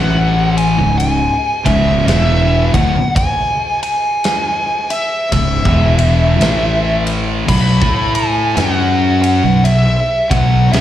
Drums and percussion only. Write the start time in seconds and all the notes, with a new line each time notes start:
0.58 ride
1.00 ride
1.66 kick, ride
2.08 snare, ride
2.74 kick, ride
3.16 kick, ride
3.83 ride
4.24 snare, ride
4.90 ride
5.32 kick, ride
5.65 kick
5.99 ride
6.41 snare, ride
7.07 ride
7.48 kick, crash
7.82 kick
8.15 ride
8.57 snare, ride
9.24 ride
9.65 ride
10.31 kick, ride
10.73 snare, ride